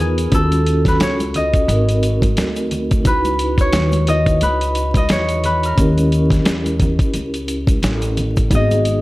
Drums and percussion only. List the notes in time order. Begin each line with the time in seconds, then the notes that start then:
0.18 closed hi-hat, shaker
0.32 kick, closed hi-hat, shaker
0.52 closed hi-hat, high conga, shaker
0.66 closed hi-hat, shaker
0.85 kick, snare, closed hi-hat, shaker
1.00 snare, closed hi-hat, shaker
1.20 closed hi-hat, high conga, shaker
1.34 closed hi-hat, low conga, shaker
1.54 kick, closed hi-hat, shaker
1.69 closed hi-hat, shaker
1.89 closed hi-hat, shaker
2.03 closed hi-hat, shaker
2.22 kick, closed hi-hat, high conga, shaker
2.37 snare, closed hi-hat, shaker
2.56 closed hi-hat, shaker
2.71 closed hi-hat, low conga, shaker
2.91 kick, closed hi-hat, shaker
3.05 kick, closed hi-hat, shaker
3.25 closed hi-hat, high conga, shaker
3.39 closed hi-hat, shaker
3.58 kick, closed hi-hat, shaker
3.73 snare, closed hi-hat, shaker
3.92 closed hi-hat, high conga, shaker
4.07 closed hi-hat, low conga, shaker
4.26 kick, closed hi-hat, shaker
4.41 closed hi-hat, shaker
4.61 closed hi-hat, shaker
4.75 closed hi-hat, shaker
4.94 kick, closed hi-hat, high conga, shaker
5.09 snare, closed hi-hat, shaker
5.29 closed hi-hat, shaker
5.44 closed hi-hat, low conga, shaker
5.63 closed hi-hat, shaker
5.78 kick, closed hi-hat, shaker
5.98 closed hi-hat, high conga, shaker
6.12 closed hi-hat, shaker
6.30 kick, snare, closed hi-hat, shaker
6.45 snare, closed hi-hat, shaker
6.66 closed hi-hat, high conga, shaker
6.80 kick, closed hi-hat, low conga, shaker
6.99 kick, closed hi-hat, shaker
7.14 closed hi-hat, shaker
7.34 closed hi-hat, shaker
7.48 closed hi-hat, shaker
7.67 kick, closed hi-hat, high conga, shaker
7.83 snare, closed hi-hat, shaker
8.02 closed hi-hat, shaker
8.17 closed hi-hat, low conga, shaker
8.37 kick, closed hi-hat, shaker
8.51 kick, closed hi-hat, shaker
8.71 closed hi-hat, high conga, shaker
8.85 closed hi-hat, shaker